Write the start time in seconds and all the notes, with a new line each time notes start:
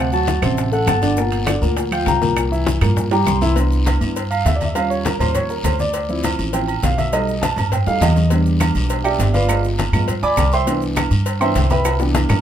Already playing: D2 A5
0.00 F#5
0.12 F#3 F#4 F#5 A5, high bongo, maracas
0.27 high bongo, high conga, high timbale, low timbale, short guiro, maracas
0.42 A1 C3 C4 C5, high bongo, high conga, low conga, high timbale, short guiro, claves, maracas
0.57 high bongo, high conga, long guiro, maracas
0.72 A3 A4 F#5 A5, maracas
0.87 G1 A5, high bongo, low bongo, high conga, high timbale, low timbale, short guiro, claves, maracas
1.02 D3 D4 D5, high bongo, high conga, high timbale, short guiro, maracas
1.16 A#2 A#3 A#4, high bongo, long guiro, maracas
1.32 high conga, high timbale, maracas
1.46 D3 D4 D5, high bongo, high conga, high timbale, low timbale, short guiro, claves, maracas
1.61 D2 A#2 A#3 A#4, high conga, short guiro, maracas
1.77 high bongo, high conga, high timbale, long guiro, maracas
1.91 F3 F4 F5 G5, high conga, high timbale, claves, maracas
2.06 C2 A#5, high bongo, low bongo, high conga, low timbale, short guiro, maracas
2.21 A#2 A#3 A#4, high conga, short guiro, maracas
2.36 high bongo, high conga, high timbale, long guiro, claves, maracas
2.51 E3 E4 E5, high bongo, maracas
2.66 high bongo, high conga, high timbale, low timbale, short guiro, maracas
2.81 G2 A#2 A#3 A#4, high bongo, high conga, low conga, high timbale, short guiro, claves, maracas
2.96 high bongo, high conga, low conga, long guiro, maracas
3.11 G3 G4 G5 A#5, high conga, high timbale, maracas
3.26 C2 C6, high bongo, low bongo, high conga, short guiro, claves, maracas
3.41 E3 E4 E5, high bongo, high conga, low timbale, short guiro, maracas
3.56 B3 D4 E4, cowbell, low agogo, long guiro, maracas
3.72 maracas
3.86 cowbell, high conga, low timbale, low agogo, short guiro, maracas
4.00 G2 B3 D4 E4, high conga, low agogo, short guiro, maracas
4.16 cowbell, high conga, low agogo, long guiro, maracas
4.30 F5, high conga, low agogo, maracas
4.45 D#2 E5, cowbell, high conga, low timbale, short guiro, maracas
4.56 D5
4.61 high conga, low agogo, short guiro, maracas
4.65 E5
4.74 G3 C#4 F4 F5, cowbell, high conga, low agogo, long guiro, maracas
4.90 C#5, high conga, maracas
5.05 A#4, cowbell, high conga, low timbale, low agogo, short guiro, maracas
5.19 D#2 C5, high conga, low conga, low agogo, short guiro, maracas
5.35 C#5, cowbell, high conga, low conga, low agogo, long guiro, maracas
5.50 A#4, high conga, maracas
5.64 D2 C5, cowbell, high conga, low timbale, low agogo, short guiro, maracas
5.79 D5, high conga, short guiro, maracas
5.93 cowbell, high conga, low agogo, long guiro, maracas
6.09 F3 C4 E4, high conga, maracas
6.23 cowbell, high conga, low timbale, low agogo, short guiro, maracas
6.39 A1, high conga, low agogo, short guiro, maracas
6.53 F3 C4 E4 G5, cowbell, high conga, low agogo, long guiro, maracas
6.68 high conga, low agogo, maracas
6.83 B1 F5, cowbell, high conga, low timbale, short guiro, maracas
6.98 E5, high conga, low agogo, short guiro, maracas
7.12 G3 A3 D#4 D#5, cowbell, high conga, low agogo, long guiro, maracas
7.28 high conga, maracas
7.42 A5, cowbell, high conga, low timbale, low agogo, short guiro, maracas
7.56 G2, high conga, low conga, low agogo, short guiro, maracas
7.72 G5, cowbell, high conga, low conga, low agogo, long guiro, maracas
7.86 F2 G3 A3 D#4 F5, high bongo, high conga, maracas
8.01 E2 D#5, cowbell, high bongo, high conga, low timbale, low agogo, short guiro, maracas
8.16 low bongo, short guiro, maracas
8.30 G3 B3 D4, cowbell, low agogo, long guiro, maracas
8.46 high conga, maracas
8.60 cowbell, high conga, low timbale, low agogo, short guiro, claves, maracas
8.75 B1, high conga, low agogo, short guiro, maracas
8.90 cowbell, low agogo, long guiro, maracas
9.04 G4 D5 E5 G5, high conga, low agogo, claves, maracas
9.19 G1, cowbell, high conga, low timbale, short guiro, maracas
9.33 F4 B4 D5 F5, high conga, low agogo, short guiro, maracas
9.48 G#3 B3 F4, cowbell, low agogo, long guiro, claves, maracas
9.64 high conga, maracas
9.78 cowbell, high conga, low timbale, low agogo, short guiro, maracas
9.92 G2 G#3 B3 F4, high conga, low conga, low agogo, short guiro, claves, maracas
10.08 cowbell, high conga, low conga, low agogo, long guiro, maracas
10.22 D2 D5 G#5 B5 D6, high conga, maracas
10.37 C2, cowbell, high conga, low timbale, low agogo, short guiro, claves, maracas
10.52 C5 E5 G5 C6, short guiro, maracas
10.66 E3 B3 D4, cowbell, low agogo, long guiro, maracas
10.82 high conga, maracas
10.96 cowbell, high conga, low timbale, low agogo, short guiro, claves, maracas
11.10 G2, high conga, low agogo, short guiro, maracas
11.26 cowbell, high conga, low agogo, long guiro, maracas
11.40 E3 B3 D4 C5 E5 G5 C6, high conga, low agogo, claves, maracas
11.55 C2, cowbell, high conga, low timbale, short guiro, maracas
11.70 B4 E5 G5 B5, high conga, low agogo, short guiro, maracas
11.85 cowbell, high bongo, high conga, low agogo, long guiro, claves, maracas
12.00 E3 B3 D4, high bongo, maracas
12.15 cowbell, high bongo, high conga, low timbale, low agogo, short guiro, maracas
12.29 G2, low bongo, high conga, low conga, low agogo, short guiro, claves, maracas